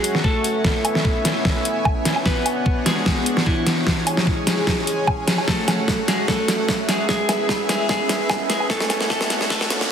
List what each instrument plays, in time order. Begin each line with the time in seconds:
Already playing: supersaw synth F#3 C#4 F#4 C#5 F#5, clean electric guitar G#3 G#4, ambient pad F#4 B4 E5 F#5
0.04 closed hi-hat
0.15 snare
0.24 clean electric guitar A3 A4, kick
0.44 closed hi-hat
0.64 supersaw synth B3 E4 E5 G#5, ambient pad C#4, kick, snare
0.85 closed hi-hat, low woodblock
0.95 snare
1.05 kick
1.25 ambient pad G#5, snare, closed hi-hat
1.45 kick, snare
1.65 closed hi-hat
1.85 kick, low woodblock
2.05 snare, closed hi-hat
2.16 low woodblock
2.25 clean electric guitar B3 B4, ambient pad B3, supersaw synth B3 D4 F#4 F#5, kick, snare
2.46 closed hi-hat, low woodblock
2.66 kick
2.75 ambient pad B4
2.86 clean electric guitar G#3 G#4, snare, closed hi-hat
2.98 ambient pad D4 F#5
3.06 kick, snare
3.26 closed hi-hat
3.37 snare
3.46 clean electric guitar E3 E4, kick
3.67 snare, closed hi-hat
3.87 supersaw synth G#3 C#4 G#4 G#5, ambient pad G#4, kick, snare
4.07 closed hi-hat, low woodblock
4.17 snare
4.27 kick
4.32 ambient pad C#5
4.47 snare, closed hi-hat
4.60 ambient pad G#5
4.67 kick, snare
4.87 closed hi-hat
5.07 kick, low woodblock
5.28 snare, closed hi-hat
5.38 low woodblock
5.48 clean electric guitar A3 A4, supersaw synth A3 F#4 F#5, ambient pad F#4, kick, snare, riser
5.68 snare, closed hi-hat, low woodblock
5.77 ambient pad A5
5.88 kick, snare
5.92 ambient pad B4
6.08 clean electric guitar G#3 G#4, snare, closed hi-hat
6.21 ambient pad E5
6.28 clean electric guitar A3 A4, kick, snare
6.48 snare, closed hi-hat
6.69 kick, snare
6.88 clean electric guitar G#3 G#4, snare, closed hi-hat
7.09 clean electric guitar G#3 G#4, supersaw synth B3 E4 G#4 E5, ambient pad C#4, kick, snare
7.29 snare, closed hi-hat, low woodblock
7.49 kick, snare
7.69 clean electric guitar G#3 G#4, snare, closed hi-hat
7.82 ambient pad G#5
7.89 clean electric guitar G#3 G#4, kick, snare
8.09 snare, closed hi-hat
8.30 kick, snare, low woodblock
8.50 clean electric guitar G#3 G#4, snare, closed hi-hat
8.60 low woodblock
8.70 clean electric guitar A3 A4, ambient pad B3, supersaw synth D4 F#4 C#5 F#5, kick, snare
8.80 snare
8.90 snare, closed hi-hat, low woodblock
9.01 snare
9.10 clean electric guitar A3 A4, kick, snare
9.17 ambient pad A4, snare
9.30 snare, closed hi-hat
9.41 ambient pad D4 F#5, snare
9.50 clean electric guitar A3 A4, kick, snare
9.61 snare
9.70 snare, closed hi-hat
9.81 snare